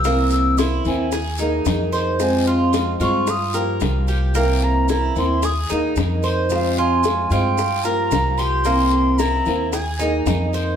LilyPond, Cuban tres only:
\new Staff \with { instrumentName = "Cuban tres" } { \time 4/4 \key c \phrygian \tempo 4 = 112 bes4 e'4 aes'8 ees'4 c''8~ | c''8 f'4 f'4 bes'4 g'8 | bes4 e'4 aes'8 ees'4 c''8~ | c''8 f'4 f'4 bes'4 g'8 |
bes4 e'4 aes'8 ees'4 c''8 | }